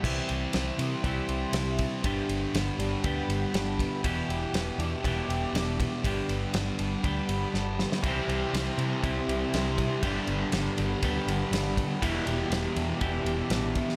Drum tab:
CC |x---------------|----------------|----------------|----------------|
RD |--x-x-x-x-x-x-x-|x-x-x-x-x-x-x-x-|x-x-x-x-x-x-x-x-|x-x-x-x-x-x-----|
SD |----o-------o---|----o-------o---|----o-------o---|----o-------o-oo|
BD |o-------o-----o-|o-------o-----o-|o-------o-----o-|o-------o-------|

CC |----------------|----------------|----------------|
RD |x-x-x-x-x-x-x-x-|x-x-x-x-x-x-x-x-|x-x-x-x-x-x-x-x-|
SD |----o-------o---|----o-------o---|----o-------o--o|
BD |o-------o-----o-|o-------o-----o-|o-------o-----o-|